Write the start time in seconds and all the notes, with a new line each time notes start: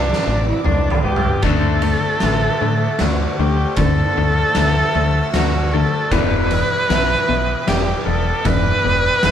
Already playing: C2 C3 B3 D4 B4 D5 F#5 D6
0.13 snare
0.26 A1 D5
0.48 E4
0.65 C2 D4, mid tom
0.90 mid tom
1.04 C#2 B3 G4 B4
1.16 floor tom
1.42 D2 D3 A3 D4 A4 C5 D5 F#5 A5 D6, kick, ride
1.82 D3 A3, ride
2.20 A1 D3 A3 E5, snare, ride
2.61 A2 D3 A3
2.99 D2 D3 A3 F#4 D5, snare, ride
3.39 D2 D3 A3 G4
3.76 D2 D3 A3 A4 D5 E6, kick, ride
4.17 D2 D3 A3
4.55 D2 D3 A3 E5, snare, ride
4.94 D2 D3 A3
5.34 D2 D3 A3 F#4 D5, snare, ride
5.72 D3 A3 A4
6.11 E1 E2 B2 E3 B4 D5 E5 G5 D6, kick, ride
6.50 E2 B2 B3, ride
6.89 B1 E2 B2 E3 E5, snare, ride
7.29 B1 E2 B2 B3
7.67 E1 E2 B2 G4 D5, snare, ride
8.06 E1 E2 B2 B3 A4
8.45 E1 E2 B2 E3 B4 D5, kick, ride
8.84 E1 E2 B2 B3
9.22 E1 E2 B2 E3 E5, snare, ride